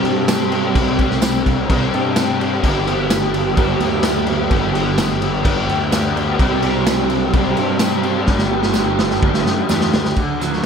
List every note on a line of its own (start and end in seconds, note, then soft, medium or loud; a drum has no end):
0.00 0.71 G2 medium
0.00 0.51 C3 loud
0.00 2.63 C3 medium
0.00 0.28 G3 medium
0.00 2.63 G3 medium
0.00 0.28 C4 loud
0.00 2.64 C4 medium
0.00 0.30 D4 loud
0.00 2.65 D4 medium
0.00 0.29 G4 medium
0.00 0.31 G4 loud
0.00 2.65 G4 medium
0.05 0.51 C4 medium
0.05 crash medium
0.28 0.77 G3 medium
0.28 0.53 C4 medium
0.28 0.53 D4 medium
0.28 0.51 G4 medium
0.28 snare loud
0.28 tambourine loud
0.28 crash medium
0.52 0.76 C4 medium
0.52 0.78 D4 medium
0.52 0.78 G4 medium
0.52 crash medium
0.75 1.65 C2 medium
0.75 1.23 C3 loud
0.75 1.71 G3 loud
0.75 1.02 C4 loud
0.75 1.01 D4 loud
0.75 1.00 G4 loud
0.75 kick loud
0.75 crash medium
0.99 1.72 D4 medium
0.99 1.73 G4 medium
0.99 kick medium
0.99 crash medium
1.03 1.71 C4 medium
1.11 snare soft
1.22 1.45 C4 medium
1.22 snare loud
1.22 tambourine loud
1.22 crash medium
1.46 1.92 C4 medium
1.46 kick medium
1.46 crash medium
1.70 1.92 C2 loud
1.70 2.40 C3 medium
1.70 2.17 G3 medium
1.70 2.17 C4 loud
1.70 2.19 D4 medium
1.70 2.20 G4 loud
1.70 kick loud
1.70 crash medium
1.93 2.60 G2 medium
1.93 2.38 C4 medium
1.93 crash medium
2.16 2.64 G3 medium
2.16 2.42 C4 medium
2.16 2.41 D4 medium
2.16 2.40 G4 medium
2.16 snare loud
2.16 tambourine loud
2.16 crash medium
2.40 2.64 C4 medium
2.40 2.65 D4 medium
2.40 2.66 G4 medium
2.40 crash medium
2.63 3.54 G1 loud
2.63 3.56 G2 loud
2.63 3.11 D3 medium
2.63 3.08 E3 medium
2.63 2.89 G3 medium
2.63 2.88 B3 loud
2.63 2.87 D4 medium
2.63 2.86 G4 loud
2.63 kick loud
2.63 crash medium
2.87 3.57 G3 medium
2.87 3.57 B3 medium
2.87 3.58 D4 medium
2.87 3.58 G4 medium
2.87 crash medium
3.10 4.28 E3 medium
3.10 snare loud
3.10 tambourine loud
3.10 crash medium
3.34 3.80 B3 medium
3.34 crash medium
3.56 3.79 G1 loud
3.56 4.27 G2 loud
3.56 4.28 D3 loud
3.56 4.02 G3 loud
3.56 4.02 B3 loud
3.56 4.04 D4 loud
3.56 4.05 G4 loud
3.56 kick loud
3.56 crash medium
3.79 4.47 D2 loud
3.79 4.27 B3 medium
3.79 crash medium
4.02 4.28 G3 medium
4.02 4.26 B3 medium
4.02 4.26 D4 medium
4.02 4.25 G4 medium
4.02 snare loud
4.02 tambourine medium
4.02 crash medium
4.26 4.50 G3 medium
4.26 4.50 B3 medium
4.26 4.51 D4 medium
4.26 4.51 G4 medium
4.26 crash medium
4.49 5.42 G1 loud
4.49 4.98 G2 medium
4.49 4.98 D3 loud
4.49 4.97 E3 medium
4.49 4.75 G3 loud
4.49 4.73 B3 loud
4.49 4.73 D4 loud
4.49 4.72 G4 loud
4.49 kick loud
4.49 crash medium
4.72 5.45 G3 medium
4.72 5.44 B3 medium
4.72 5.45 D4 medium
4.72 5.46 G4 medium
4.72 crash medium
4.98 6.16 E3 medium
4.98 snare loud
4.98 tambourine loud
4.98 crash medium
5.22 5.68 B3 medium
5.22 crash medium
5.44 5.67 G1 loud
5.44 6.15 G2 loud
5.44 6.16 D3 loud
5.44 5.91 G3 loud
5.44 5.91 B3 loud
5.44 5.93 D4 loud
5.44 5.94 G4 loud
5.44 kick loud
5.44 crash medium
5.68 6.35 D2 medium
5.68 6.15 B3 medium
5.68 crash medium
5.91 6.18 G3 medium
5.91 6.17 B3 medium
5.91 6.17 D4 medium
5.91 6.16 G4 medium
5.91 snare loud
5.91 tambourine loud
5.91 crash medium
6.16 6.39 G3 medium
6.16 6.39 B3 medium
6.16 6.41 D4 medium
6.16 6.41 G4 medium
6.16 crash medium
6.39 7.30 C2 loud
6.39 6.87 C3 loud
6.39 7.34 G3 loud
6.39 6.64 C4 loud
6.39 6.64 D4 loud
6.39 6.63 G4 loud
6.39 kick loud
6.39 crash medium
6.62 7.34 C4 medium
6.62 7.36 D4 medium
6.62 7.36 G4 medium
6.62 crash medium
6.87 7.10 C4 medium
6.87 snare loud
6.87 tambourine loud
6.87 crash medium
7.10 7.56 C4 medium
7.10 crash medium
7.33 7.56 C2 loud
7.33 8.04 C3 loud
7.33 7.80 G3 loud
7.33 7.81 C4 loud
7.33 7.83 D4 loud
7.33 7.82 G4 loud
7.33 kick loud
7.33 crash medium
7.57 8.24 G2 medium
7.57 8.03 C4 medium
7.57 crash medium
7.79 8.27 G3 medium
7.79 8.04 C4 medium
7.79 8.04 D4 medium
7.79 snare loud
7.79 tambourine loud
7.79 crash medium
7.84 8.02 G4 medium
8.03 8.27 C4 medium
8.03 8.29 D4 medium
8.03 8.26 G4 medium
8.03 crash medium
8.27 9.18 G1 loud
8.27 8.75 G2 medium
8.27 8.75 D3 loud
8.27 8.53 G3 loud
8.27 8.52 B3 loud
8.27 8.51 D4 loud
8.27 8.50 G4 medium
8.27 kick medium
8.27 snare medium
8.39 snare medium
8.51 9.24 G3 medium
8.51 9.24 B3 medium
8.51 9.24 D4 medium
8.51 9.25 G4 medium
8.63 snare medium
8.74 snare medium
8.74 tambourine loud
8.98 9.45 B3 medium
8.98 snare loud
9.11 snare medium
9.22 9.44 G1 loud
9.22 9.94 G2 medium
9.22 9.94 D3 medium
9.22 9.68 G3 medium
9.22 9.69 B3 loud
9.22 9.70 D4 loud
9.22 9.71 G4 medium
9.22 kick loud
9.34 snare medium
9.45 9.66 F#2 medium
9.45 9.92 B3 medium
9.45 snare medium
9.69 9.91 E2 medium
9.69 9.95 G3 medium
9.69 9.95 B3 medium
9.69 9.94 D4 medium
9.69 9.93 G4 medium
9.69 snare medium
9.69 tambourine loud
9.81 snare medium
9.93 10.15 D2 medium
9.93 10.17 G3 medium
9.93 10.17 B3 medium
9.93 10.16 D4 medium
9.93 10.16 G4 medium
9.93 snare loud
10.05 snare medium
10.16 10.60 D2 medium
10.16 10.66 D3 medium
10.16 10.66 F#3 medium
10.16 kick loud
10.16 crash medium
10.40 10.63 F#3 medium
10.40 10.66 F#4 medium
10.40 closed hi-hat medium
10.53 snare soft